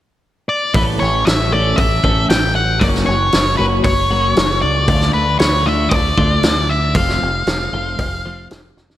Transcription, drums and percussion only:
0.74 kick, open hi-hat
1.27 snare, open hi-hat
1.78 kick, open hi-hat
2.04 kick
2.30 snare, open hi-hat
2.81 kick, open hi-hat
2.95 snare
3.32 snare, open hi-hat
3.84 kick, open hi-hat
4.36 snare, open hi-hat
4.88 kick, open hi-hat
5.01 snare
5.39 snare, open hi-hat
5.91 kick, open hi-hat
6.18 kick
6.43 snare, open hi-hat
6.95 kick, open hi-hat
7.09 snare
7.47 snare, open hi-hat
7.99 kick, open hi-hat
8.51 snare, open hi-hat
8.77 snare
8.90 snare

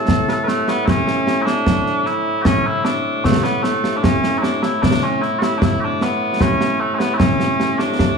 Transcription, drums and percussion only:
0.08 concert bass drum, snare
0.28 snare
0.48 snare
0.68 snare
0.88 concert bass drum, snare
1.08 snare
1.27 snare
1.47 snare
1.67 concert bass drum, snare
1.86 snare
2.06 snare
2.45 concert bass drum, snare
2.85 snare
3.25 concert bass drum, snare
3.44 snare
3.64 snare
3.84 snare
4.04 concert bass drum, snare
4.24 snare
4.43 snare
4.63 snare
4.83 concert bass drum, snare
5.03 snare
5.22 snare
5.42 snare
5.62 concert bass drum, snare
6.01 snare
6.41 concert bass drum, snare
6.61 snare
7.00 snare
7.20 concert bass drum, snare
7.40 snare
7.60 snare
7.79 snare
7.99 concert bass drum, snare

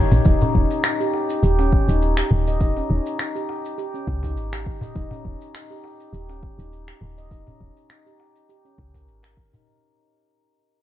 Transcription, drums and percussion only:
0.11 darbuka tek, darbuka dum, shaker
0.25 kick, shaker
0.41 darbuka ka, darbuka dum, shaker
0.55 kick
0.71 shaker
0.83 finger snap, darbuka tek, shaker
1.00 shaker
1.13 darbuka ka, darbuka tek
1.30 shaker
1.43 shaker
1.59 darbuka tek, shaker
1.73 kick
1.89 shaker
2.02 shaker
2.17 finger snap, shaker
2.31 darbuka dum
2.47 shaker
2.61 kick, shaker
2.77 darbuka ka, shaker
3.06 shaker
3.19 finger snap, shaker
3.36 shaker
3.49 darbuka ka, darbuka tek
3.65 shaker
3.78 shaker
3.95 shaker
4.08 kick, darbuka ka
4.23 kick, darbuka tek, shaker
4.37 shaker
4.53 finger snap, darbuka tek, shaker
4.66 kick
4.81 darbuka tek, darbuka dum, shaker
4.96 kick, shaker
5.11 darbuka ka, darbuka dum, shaker
5.25 kick
5.42 shaker
5.54 finger snap, darbuka tek, shaker
5.71 shaker
5.84 darbuka ka, darbuka tek
6.00 shaker
6.14 shaker
6.29 darbuka tek, shaker
6.43 kick
6.59 shaker
6.73 shaker
6.88 finger snap, shaker
7.02 darbuka dum
7.18 shaker
7.31 kick, shaker
7.47 darbuka ka, darbuka dum, shaker
7.61 kick
7.77 shaker
7.89 finger snap, darbuka tek, shaker
8.07 shaker
8.19 darbuka ka, darbuka tek
8.36 shaker
8.49 shaker
8.66 shaker
8.78 kick, darbuka ka
8.94 kick, darbuka tek, shaker
9.08 shaker
9.23 finger snap, darbuka tek, shaker
9.37 kick, darbuka ka
9.54 darbuka tek, darbuka dum, shaker

